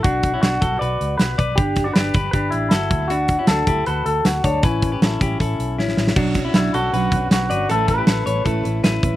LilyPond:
<<
  \new Staff \with { instrumentName = "Clean electric guitar" } { \time 4/4 \key b \minor \tempo 4 = 157 fis'4 fis'4 d''4 b'4 | g'8. d''16 b'4 b'8 e'8 e'4 | fis'4 a'4 b'8 a'8 fis'8 d'8 | cis'2. r4 |
r4 e'8 fis'4. fis'4 | a'8 b'2 r4. | }
  \new Staff \with { instrumentName = "Clean electric guitar" } { \time 4/4 \key b \minor <d' fis'>8. <cis' e'>16 <d' fis'>8 <fis' a'>8 <fis' b'>4. <b' d''>8 | <d' g'>8. <d' fis'>16 <d' g'>8 <g' b'>8 <d' g'>4 <fis' a'>4 | <d' fis'>8. <cis' e'>16 <d' fis'>8 <e' g'>8 <fis' a'>4. <a' cis''>8 | <e' b'>8. <g' b'>16 <e' a'>8 <e' g'>8 <e' a'>4 <cis' e'>4 |
<d' fis'>8. <cis' e'>16 <d' fis'>8 <fis' a'>8 <fis' b'>4. <b' d''>8 | <e' a'>8. <e' g'>16 <e' a'>8 <a' cis''>8 <e' a'>4 <e' b'>4 | }
  \new Staff \with { instrumentName = "Steel-string acoustic guitar" } { \time 4/4 \key b \minor r1 | r1 | r1 | r1 |
<b, fis cis' d' fis'>8 <cis' d' fis'>8 <fis cis' d' fis'>8 <cis' d' fis'>8 <b, fis cis' d' fis'>8 <cis' d' fis'>8 <fis cis' d' fis'>8 <cis' d' fis'>8 | <a cis' e' b'>8 <cis' e' b'>8 <a cis' e' b'>8 <cis' e' b'>8 <a cis' e' b'>8 <cis' e' b'>8 <a cis' e' b'>8 <cis' e' b'>8 | }
  \new Staff \with { instrumentName = "Fingered electric bass" } { \clef bass \time 4/4 \key b \minor b,,4 b,,8 b,,8 b,,8 cis,8 b,,8 b,,8 | g,,4 g,,8 g,,8 g,,8 a,,8 g,,8 d,8~ | d,4 d,8 d,8 d,8 d,8 d,8 d,8 | a,,4 a,,8 a,,8 a,,8 b,,8 a,,8 a,,8 |
b,,4 b,,8 b,,8 b,,8 b,,8 b,,8 g,,8 | a,,4 a,,8 a,,8 a,,8 a,,8 a,,8 a,,8 | }
  \new DrumStaff \with { instrumentName = "Drums" } \drummode { \time 4/4 <hh bd>8 <hh bd>8 <hh sn>8 <hh bd>8 hh8 hh8 <hh sn>8 <hh bd>8 | <hh bd>8 <hh bd sn>8 <hh sn>8 <hh bd>8 <hh bd>8 hh8 <hh sn>8 <hh bd>8 | hh8 <hh bd>8 <hh sn>8 <hh bd>8 hh8 hh8 <hh sn>8 <hh bd>8 | <hh bd>8 <hh bd>8 <hh sn>8 <hh bd>8 <hh bd>8 hh8 sn16 sn16 sn16 sn16 |
<cymc bd>8 <hh bd sn>8 <hh sn>8 hh8 hh8 <hh bd>8 <hh sn>8 hh8 | hh8 <hh bd>8 <hh sn>8 hh8 <hh bd>8 hh8 <hh sn>8 <hh bd>8 | }
>>